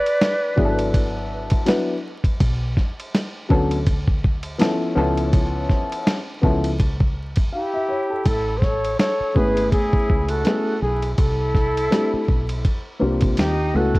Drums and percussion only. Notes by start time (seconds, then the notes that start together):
0.06 ride
0.21 snare, hi-hat pedal, ride
0.58 kick
0.79 ride
0.94 kick, ride
1.50 kick, ride
1.67 snare, hi-hat pedal, ride
2.24 kick, ride
2.40 kick, ride
2.77 kick, snare
2.99 ride
3.14 snare, hi-hat pedal, ride
3.50 kick
3.71 ride
3.87 kick, ride
4.08 kick
4.24 kick
4.43 ride
4.59 snare, hi-hat pedal, ride
5.17 ride
5.33 kick, ride
5.70 kick, snare
5.92 ride
6.07 snare, hi-hat pedal, ride
6.43 kick
6.64 ride
6.80 kick, ride
7.00 kick
7.36 kick, ride
8.26 kick, ride
8.62 kick, snare
8.84 ride
8.99 snare, hi-hat pedal, ride
9.36 kick
9.57 ride
9.72 kick, ride
9.93 kick
10.10 kick
10.28 ride
10.45 snare, hi-hat pedal, ride
11.02 ride
11.18 kick, ride
11.55 kick, snare
11.77 ride
11.92 snare, hi-hat pedal, ride
12.28 kick
12.49 ride
12.65 kick, ride
13.21 kick, ride
13.37 snare, hi-hat pedal, ride
13.95 kick, ride